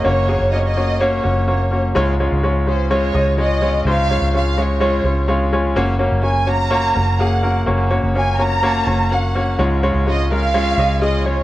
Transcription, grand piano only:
X:1
M:4/4
L:1/8
Q:1/4=126
K:Db
V:1 name="Grand piano"
[B,DGd] [B,DGA] [B,DGd] [B,DGd] [B,DGd] [B,DGd] [B,DGd] [B,DGd] | [A,DFd] [A,DFd] [A,DFd] [A,DFd] [A,DFd] [A,DFe] [A,DFd] [A,DFd] | [A,DFc] [A,DFd] [A,DFd] [A,DFd] [A,DFd] [A,DFd] [A,DFdf] [A,DFda] | [B,DGd] [B,DGd] [B,DGd] [B,DGd] [B,DGd] [B,DGd] [B,DGA] [B,DGB] |
[B,DGd] [B,DGd] [B,DGd] [B,DGd] [B,DGd] [B,DGd] [B,DGd] [B,DGd] | [A,DFd] [A,DFd] [A,DFd] [A,DFB] [A,DFd] [A,DFe] [A,DFA] [A,DFd] |]
V:2 name="Grand piano" clef=bass
D,3 z4 z | A,,3 z4 z | A,,3 z4 z | D,3 z4 z |
D,3 z4 z | A,,3 z4 z |]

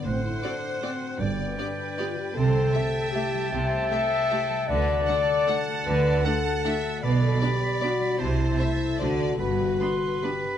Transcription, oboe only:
X:1
M:3/4
L:1/8
Q:1/4=153
K:Gmix
V:1 name="Oboe"
^f6 | g6 | [K:G] a6- | a6 |
a6- | a6 | b6 | a4- a z |
b2 c'2 b2 |]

